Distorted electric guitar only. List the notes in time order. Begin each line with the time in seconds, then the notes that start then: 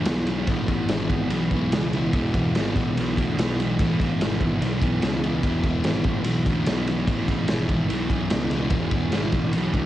0.07 E2 B2 E3
0.28 B2 E3
0.48 E2 B2 E3
0.69 B2 E3
0.89 E2 B2 E3
1.09 B2 E3
1.31 E2 B2 E3
1.53 B2 E3
1.74 E2 B2 E3
1.95 B2 E3
2.14 E2 B2 E3
2.34 B2 E3
2.56 E2 B2 E3
2.76 B2 E3
2.97 E2 B2 E3
3.18 B2 E3
3.40 E2 B2 E3
3.60 B2 E3
3.81 E2 B2 E3
4.01 B2 E3
4.22 E2 B2 E3
4.42 B2 E3
4.62 E2 B2 E3
4.82 B2 E3
5.02 E2 B2 E3
5.23 B2 E3
5.44 E2 B2 E3
5.66 B2 E3
5.84 E2 B2 E3
6.05 B2 E3
6.26 E2 B2 E3
6.45 B2 E3
6.66 E2 B2 E3
6.87 E3
6.91 B2
7.08 E2 B2 E3
7.26 B2 E3
7.48 E2 B2 E3
7.68 B2 E3
7.87 E2 B2 E3
8.09 B2 E3
8.30 E2 B2 E3
8.52 B2 E3
8.73 E2 B2 E3
8.92 B2 E3
9.12 E2 B2 E3
9.34 B2 E3
9.54 E2 B2 E3
9.75 B2 E3